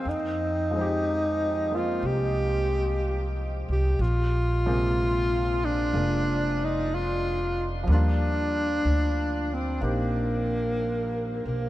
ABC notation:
X:1
M:4/4
L:1/8
Q:"Swing" 1/4=62
K:Fm
V:1 name="Alto saxophone"
E3 F G2 z G | F3 =D2 E F z | =D3 C B,3 B, |]
V:2 name="Grand piano"
g [F,A,CEG]2 [A,B,CF]4- [A,B,CF] | z [C,A,B,CF]3 [A,B,=d]4 | [F,G,B,=DF]4 [B,CEG]4 |]
V:3 name="Upright bass" clef=bass
F,,4 C,,3 C,, | B,,,4 F,,,4 | E,,2 =D,,2 B,,,3 =B,,, |]